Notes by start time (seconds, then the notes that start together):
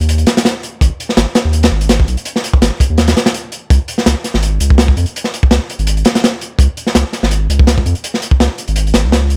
0.00 D#2, closed hi-hat
0.09 closed hi-hat
0.18 closed hi-hat
0.27 snare, closed hi-hat
0.37 snare, closed hi-hat
0.45 snare, closed hi-hat
0.63 closed hi-hat
0.81 G#1, kick, closed hi-hat
1.00 closed hi-hat
1.09 snare
1.17 G#1, snare, closed hi-hat
1.35 snare, closed hi-hat
1.45 D#2
1.53 closed hi-hat
1.63 snare, closed hi-hat
1.71 G#1
1.81 closed hi-hat
1.89 snare, closed hi-hat
2.00 kick
2.08 B1, closed hi-hat
2.17 closed hi-hat
2.25 closed hi-hat
2.36 snare
2.44 closed hi-hat
2.53 kick
2.62 G#1, snare, closed hi-hat
2.80 kick, closed hi-hat
2.90 D#2
2.98 snare, closed hi-hat
3.08 snare, closed hi-hat
3.17 snare, closed hi-hat
3.26 snare, closed hi-hat
3.34 closed hi-hat
3.52 closed hi-hat
3.70 C#2, kick, closed hi-hat
3.88 closed hi-hat
3.98 snare
4.06 C#2, snare, closed hi-hat
4.24 snare, closed hi-hat
4.34 G#1, snare
4.42 closed hi-hat
4.60 C#2, closed hi-hat
4.70 kick
4.78 snare, closed hi-hat
4.88 kick
4.97 F2, closed hi-hat
5.06 closed hi-hat
5.16 closed hi-hat
5.24 snare
5.34 closed hi-hat
5.43 kick
5.51 C#2, snare, closed hi-hat
5.70 closed hi-hat
5.79 G#1, closed hi-hat
5.87 closed hi-hat
5.97 closed hi-hat
6.05 snare, closed hi-hat
6.15 snare, closed hi-hat
6.24 snare, closed hi-hat
6.41 closed hi-hat
6.59 C#2, kick, closed hi-hat
6.77 closed hi-hat
6.87 snare
6.95 C#2, snare, closed hi-hat
7.13 snare, closed hi-hat
7.23 G#1, snare
7.31 closed hi-hat
7.49 C#2, closed hi-hat
7.59 kick
7.67 snare, closed hi-hat
7.78 kick
7.86 F2, closed hi-hat
7.95 closed hi-hat
8.04 closed hi-hat
8.14 snare
8.22 closed hi-hat
8.31 kick
8.40 C#2, snare, closed hi-hat
8.58 closed hi-hat
8.68 G#1, closed hi-hat
8.76 closed hi-hat
8.87 closed hi-hat
8.94 G#1, snare, closed hi-hat
9.04 C#2
9.12 snare, closed hi-hat
9.30 closed hi-hat